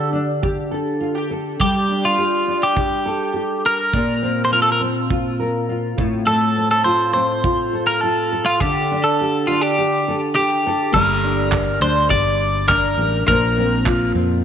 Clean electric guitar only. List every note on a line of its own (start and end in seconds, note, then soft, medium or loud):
0.00 0.10 A4 medium
1.61 2.06 G4 medium
2.05 2.65 F4 medium
2.63 3.66 G4 medium
3.66 4.41 A#4 medium
4.45 4.52 C5 medium
4.53 4.62 A#4 medium
4.62 4.72 A4 medium
4.72 4.81 A#4 medium
6.27 6.68 A4 medium
6.71 6.84 A4 medium
6.84 7.12 C5 loud
7.14 7.86 C5 loud
7.87 8.01 A#4 medium
8.01 8.45 A4 medium
8.46 8.60 F4 medium
8.60 9.06 G4 medium
9.04 9.49 A4 medium
9.47 9.61 F4 medium
9.61 10.21 G4 medium
10.35 10.96 G4 medium
10.94 11.82 A#4 medium
11.82 12.10 C5 medium
12.10 12.68 D5 medium
12.68 13.23 A#4 medium
13.28 14.11 A#4 medium